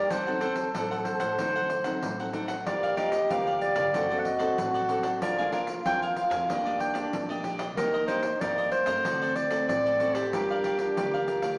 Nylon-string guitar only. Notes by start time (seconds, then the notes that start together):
0.11 D3 F#3 C4 D#4
0.28 F#3 C4 D#4
0.42 F#3 C4 D#4
0.75 A2 F#3 C4 D#4
1.39 D3 F#3 C4 D#4
1.84 F#3 C4 D#4
2.03 A2
2.19 F#3 C4 D#4
2.33 F#3 C4 D#4
2.66 G2 F3 A#3 D4
2.97 F3 A#3 D4
3.30 D3 F3 A#3 D4
3.94 F#3 C4 D4 A4
4.11 C4 D4 A4
4.40 C4 D4 A4
4.58 F#3
4.89 C4 D4 A4
5.22 F3 A#3 D4 G#4
5.39 A#3 D4 G#4
5.52 A#3 D4 G#4
5.86 F3 A#3 D4 G#4
6.50 D#3 A#3 D4 G4
6.66 A#3 D4 G4
6.95 A#3 D4 G4
7.13 A#2
7.30 A#3 D4 G4
7.44 A#3 D4 G4
7.77 D#3 A#3 D4 G4
8.08 A#3 D4 G4
8.41 D#3 A#3 D4 G4
8.86 A3 C4 F#4
9.05 D3
9.51 A3 C4 F#4
9.69 A2
9.86 A3 C4 F#4
10.00 A3 C4 F#4
10.33 G3 D4 F4 A#4
10.78 D4 F4 A#4
10.97 D3
11.27 D4 F4 A#4